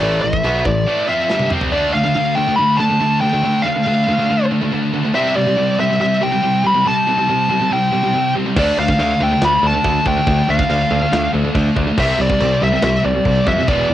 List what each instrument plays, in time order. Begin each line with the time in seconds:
0.00 picked electric bass A1, distorted electric guitar A2 E3 A3, lead electric guitar D5, china
0.22 picked electric bass A1, distorted electric guitar A2 E3, lead electric guitar E5
0.33 kick
0.43 picked electric bass B1, distorted electric guitar B2 F#3 B3, china
0.65 picked electric bass A1, distorted electric guitar A2 E3, lead electric guitar D5, kick
0.86 distorted electric guitar A2 E3 A3
1.08 distorted electric guitar F3 C4 F4, lead electric guitar E5
1.29 distorted electric guitar G2 D3 G3, snare
1.39 high tom
1.50 distorted electric guitar C3 G3 C4, mid tom
1.61 floor tom
1.72 distorted electric guitar D3 A3 D4, lead electric guitar D5
1.93 distorted electric guitar D3 A3 D4, lead electric guitar F5
2.05 distorted electric guitar D3 A3
2.15 distorted electric guitar D3 A3 D4
2.35 distorted electric guitar D3 A3 D4, lead electric guitar G5
2.47 distorted electric guitar D3 A3
2.56 distorted electric guitar D3 A3 D4, lead electric guitar B5
2.77 distorted electric guitar D3 A3 D4, lead electric guitar A5
2.90 distorted electric guitar D3 A3
3.00 distorted electric guitar D3 A3 D4
3.21 distorted electric guitar D3 A3 D4, lead electric guitar G5
3.33 distorted electric guitar D3 A3
3.44 distorted electric guitar D3 A3 D4
3.63 distorted electric guitar D3 A3 D4, lead electric guitar F5
3.76 distorted electric guitar D3 A3
3.86 distorted electric guitar D3 A3 D4
4.08 distorted electric guitar D3 A3 D4
4.19 distorted electric guitar D3 A3
4.29 distorted electric guitar D3 A3 D4
4.51 distorted electric guitar D3 A3 D4
4.61 distorted electric guitar D3 A3
4.72 distorted electric guitar D3 A3 D4
4.93 distorted electric guitar D3 A3 D4
5.04 distorted electric guitar D3 A3
5.14 distorted electric guitar C3 G3 C4, lead electric guitar E5
5.35 distorted electric guitar C3 G3 C4, lead electric guitar D5
5.46 distorted electric guitar C3 G3
5.57 distorted electric guitar C3 G3 C4
5.78 distorted electric guitar C3 G3 C4, lead electric guitar E5
5.89 distorted electric guitar C3 G3
6.00 distorted electric guitar C3 G3 C4, lead electric guitar E5
6.21 distorted electric guitar C3 G3 C4, lead electric guitar G5
6.31 distorted electric guitar C3 G3
6.42 distorted electric guitar C3 G3 C4
6.64 distorted electric guitar C3 G3 C4, lead electric guitar B5
6.74 distorted electric guitar C3 G3
6.85 distorted electric guitar C3 G3 C4, lead electric guitar A5
7.07 distorted electric guitar C3 G3 C4
7.18 distorted electric guitar C3 G3
7.28 distorted electric guitar C3 G3 C4
7.49 distorted electric guitar C3 G3 C4
7.60 distorted electric guitar C3 G3
7.71 distorted electric guitar C3 G3 C4, lead electric guitar G5
7.92 distorted electric guitar C3 G3 C4
8.03 distorted electric guitar C3 G3
8.13 distorted electric guitar C3 G3 C4
8.35 distorted electric guitar C3 G3 C4
8.45 distorted electric guitar C3 G3
8.56 picked electric bass D2, distorted electric guitar D3 A3 D4, lead electric guitar D5, kick, china, crash
8.77 picked electric bass D2, distorted electric guitar D3 A3 D4, lead electric guitar F5
8.88 distorted electric guitar D3 A3, kick
8.99 picked electric bass D2, distorted electric guitar D3 A3 D4, china
9.20 picked electric bass D2, distorted electric guitar D3 A3 D4, lead electric guitar G5
9.31 distorted electric guitar D3 A3
9.42 picked electric bass D2, distorted electric guitar D3 A3 D4, lead electric guitar B5, snare, china
9.63 picked electric bass D2, distorted electric guitar D3 A3 D4, lead electric guitar A5
9.74 distorted electric guitar D3 A3
9.84 picked electric bass D2, distorted electric guitar D3 A3 D4, kick, china
10.05 picked electric bass D2, distorted electric guitar D3 A3 D4, lead electric guitar G5, kick
10.17 distorted electric guitar D3 A3
10.27 picked electric bass D2, distorted electric guitar D3 A3 D4, kick, china
10.48 picked electric bass D2, distorted electric guitar D3 A3 D4, lead electric guitar F5
10.59 distorted electric guitar D3 A3, kick
10.70 picked electric bass D2, distorted electric guitar D3 A3 D4, china
10.91 picked electric bass D2, distorted electric guitar D3 A3 D4
11.01 distorted electric guitar D3 A3
11.12 picked electric bass D2, distorted electric guitar D3 A3 D4, snare, china
11.33 picked electric bass D2, distorted electric guitar D3 A3 D4
11.45 distorted electric guitar D3 A3
11.54 picked electric bass D2, distorted electric guitar D3 A3 D4, kick, china
11.76 picked electric bass D2, distorted electric guitar D3 A3 D4, kick
11.87 distorted electric guitar D3 A3
11.97 picked electric bass C2, distorted electric guitar C3 G3 C4, lead electric guitar E5, kick, crash, china
12.19 picked electric bass C2, distorted electric guitar C3 G3 C4, lead electric guitar D5
12.29 distorted electric guitar C3 G3, kick
12.40 picked electric bass C2, distorted electric guitar C3 G3 C4, china
12.62 picked electric bass C2, distorted electric guitar C3 G3 C4, lead electric guitar E5
12.73 distorted electric guitar C3 G3
12.82 picked electric bass C2, distorted electric guitar C3 G3 C4, lead electric guitar E5, snare, china
13.04 picked electric bass C2, distorted electric guitar C3 G3 C4, lead electric guitar D5
13.14 distorted electric guitar C3 G3
13.25 picked electric bass C2, distorted electric guitar C3 G3 C4, kick, china
13.46 picked electric bass F2, distorted electric guitar C3 G3 C4, lead electric guitar E5, kick
13.57 distorted electric guitar C3 G3
13.68 picked electric bass E1, distorted electric guitar E2 B2 E3, lead electric guitar D5, kick, china
13.89 picked electric bass E1, distorted electric guitar E2 B2 E3